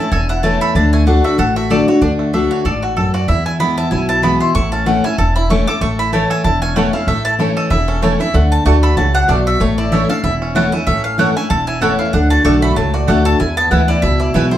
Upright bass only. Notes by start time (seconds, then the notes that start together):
0.12 E1
0.75 D2
1.38 A1
2.02 D2
2.65 A1
3.28 E2
3.92 B1
4.55 A1
5.18 E1
5.81 A1
6.44 E1
7.07 A1
7.71 E1
8.34 D2
8.65 D2
8.97 C#2
9.28 B1
9.60 A1
10.24 E1
10.87 A1
11.51 E1
12.14 D2
12.45 B1
12.77 C#2
13.08 D2
13.40 E2
13.71 D2
14.03 C#2
14.34 B1